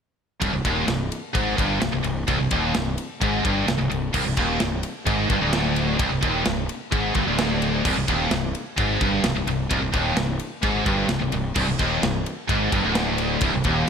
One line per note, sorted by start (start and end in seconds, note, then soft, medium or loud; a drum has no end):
0.42 0.53 C1 medium
0.42 0.52 C2 loud
0.42 kick loud
0.42 ride loud
0.53 0.64 C1 medium
0.53 0.65 C2 medium
0.65 0.87 D#1 medium
0.65 0.87 D#2 loud
0.65 kick loud
0.65 ride medium
0.87 1.09 C1 medium
0.87 1.06 C2 medium
0.87 snare loud
0.87 ride loud
1.12 ride medium
1.34 1.57 G#1 medium
1.34 1.56 G#2 loud
1.34 kick loud
1.34 ride loud
1.57 1.80 G1 medium
1.57 1.80 G2 loud
1.57 kick loud
1.57 ride medium
1.80 1.93 C1 medium
1.80 1.91 C2 medium
1.80 snare loud
1.80 ride loud
1.92 2.04 C1 medium
1.92 2.03 C2 medium
2.04 2.27 C1 medium
2.04 2.23 C2 medium
2.04 ride medium
2.28 2.39 C1 loud
2.28 2.39 C2 loud
2.28 kick loud
2.28 ride loud
2.40 2.51 C1 medium
2.40 2.51 C2 medium
2.51 2.73 D#1 loud
2.51 2.74 D#2 medium
2.51 kick loud
2.51 ride medium
2.74 2.97 C1 medium
2.74 2.94 C2 medium
2.74 snare loud
2.74 ride loud
2.98 ride medium
3.22 3.43 G#1 medium
3.22 3.44 G#2 loud
3.22 kick loud
3.22 ride loud
3.45 3.66 G1 medium
3.45 3.67 G2 loud
3.45 kick loud
3.45 ride medium
3.68 3.79 C1 medium
3.68 3.78 C2 medium
3.68 snare loud
3.68 ride medium
3.79 3.90 C1 medium
3.79 3.89 C2 medium
3.90 4.13 C1 medium
3.90 4.09 C2 medium
3.90 ride medium
4.14 4.25 C1 medium
4.14 4.24 C2 loud
4.14 kick loud
4.14 crash loud
4.26 4.37 C1 medium
4.26 4.36 C2 medium
4.37 4.59 D#1 loud
4.37 4.59 D#2 loud
4.37 kick loud
4.37 ride medium
4.60 4.83 C1 medium
4.60 4.79 C2 medium
4.60 snare loud
4.60 ride medium
4.83 ride medium
5.06 5.28 G#1 medium
5.06 5.29 G#2 medium
5.06 kick loud
5.06 ride medium
5.30 5.41 G1 medium
5.30 5.41 G2 loud
5.30 kick loud
5.30 ride medium
5.41 5.96 D1 medium
5.41 5.99 D2 loud
5.53 snare loud
5.53 ride loud
5.76 ride medium
5.99 6.11 C1 medium
5.99 6.10 C2 loud
5.99 kick loud
5.99 ride loud
6.12 6.22 C1 medium
6.12 6.22 C2 medium
6.23 6.44 D#1 loud
6.23 6.45 D#2 loud
6.23 kick loud
6.23 ride medium
6.45 6.68 C1 medium
6.45 6.64 C2 medium
6.45 snare loud
6.45 ride medium
6.69 ride medium
6.92 7.14 G#1 medium
6.92 7.14 G#2 loud
6.92 kick loud
6.92 ride loud
7.14 7.26 G1 medium
7.14 7.26 G2 loud
7.14 kick medium
7.14 ride medium
7.27 7.81 D1 medium
7.27 7.84 D2 medium
7.38 snare loud
7.38 ride loud
7.62 ride medium
7.85 7.96 C1 medium
7.85 7.96 C2 loud
7.85 kick loud
7.85 crash loud
7.97 8.07 C1 medium
7.97 8.08 C2 medium
8.08 8.30 D#1 loud
8.08 8.31 D#2 medium
8.08 kick medium
8.08 ride medium
8.31 8.53 C1 medium
8.31 8.51 C2 medium
8.31 snare loud
8.31 ride medium
8.55 ride medium
8.77 8.99 G#1 medium
8.77 9.01 G#2 medium
8.77 kick loud
8.77 ride loud
9.01 9.23 G1 medium
9.01 9.24 G2 loud
9.01 kick loud
9.01 ride medium
9.23 9.34 C1 medium
9.23 9.35 C2 medium
9.23 snare loud
9.23 ride loud
9.36 9.46 C1 medium
9.36 9.47 C2 medium
9.47 9.68 C1 medium
9.47 9.66 C2 medium
9.47 ride medium
9.70 9.81 C1 medium
9.70 9.80 C2 loud
9.70 kick loud
9.70 ride loud
9.81 9.93 C1 medium
9.81 9.93 C2 medium
9.93 10.15 D#1 loud
9.93 10.16 D#2 medium
9.93 kick loud
9.93 ride medium
10.16 10.38 C1 medium
10.16 10.36 C2 medium
10.16 snare loud
10.16 ride loud
10.39 ride medium
10.63 10.85 G#1 medium
10.63 10.86 G#2 loud
10.63 kick loud
10.63 ride loud
10.86 11.08 G1 medium
10.86 11.09 G2 loud
10.86 kick medium
10.86 ride medium
11.09 11.20 C1 medium
11.09 11.20 C2 medium
11.09 snare loud
11.09 ride loud
11.21 11.32 C1 medium
11.21 11.32 C2 medium
11.32 11.54 C1 medium
11.32 11.51 C2 medium
11.32 ride medium
11.55 11.67 C1 loud
11.55 11.67 C2 loud
11.55 kick loud
11.55 crash loud
11.68 11.79 C1 medium
11.68 11.79 C2 medium
11.79 12.01 D#1 loud
11.79 12.02 D#2 loud
11.79 kick loud
11.79 ride medium
12.03 12.24 C1 medium
12.03 12.21 C2 medium
12.03 snare loud
12.03 ride loud
12.26 ride medium
12.49 12.70 G#1 medium
12.49 12.72 G#2 loud
12.49 kick loud
12.49 ride loud
12.72 12.83 G1 medium
12.72 12.83 G2 loud
12.72 kick medium
12.72 ride medium
12.85 13.38 D1 medium
12.85 13.41 D2 loud
12.95 snare loud
12.95 ride loud
13.18 ride medium
13.41 13.52 C1 medium
13.41 13.53 C2 loud
13.41 kick loud
13.41 ride loud
13.54 13.64 C1 medium
13.54 13.65 C2 medium
13.64 13.86 D#1 loud
13.64 13.87 D#2 loud
13.64 kick loud
13.64 ride medium